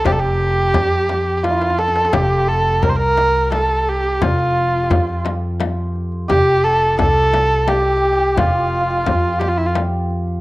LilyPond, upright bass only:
\new Staff \with { instrumentName = "Upright bass" } { \clef bass \time 3/4 \tempo 4 = 86 f,,4 f,2 | f,,4 c,2 | f,,4 f,2 | f,,4 c,2 |
f,,4 f,2 | }